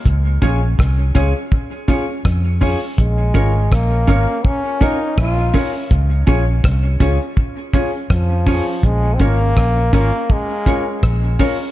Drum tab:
HH |px-x-x-o|px-x-x-o|px-x-x-o|px-x-x-o|
SD |--r---r-|--r---r-|--r---r-|--r---r-|
BD |oooooooo|oooooooo|oooooooo|oooooooo|